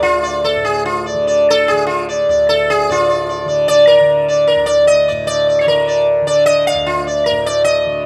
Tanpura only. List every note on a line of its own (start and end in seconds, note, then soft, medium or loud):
0.00 2.28 D2 medium
0.00 0.56 A2 medium
0.00 1.14 D3 medium
0.56 2.89 A2 medium
1.14 1.72 D3 medium
1.72 3.45 D3 medium
2.29 4.55 D2 medium
2.89 5.11 A2 medium
3.45 4.01 D3 medium
4.01 5.66 D3 medium
4.56 6.74 D2 medium
5.11 7.31 A2 medium
5.66 6.22 D3 medium
6.22 7.85 D3 medium
6.74 8.06 D2 medium
7.31 8.06 A2 medium
7.85 8.06 D3 medium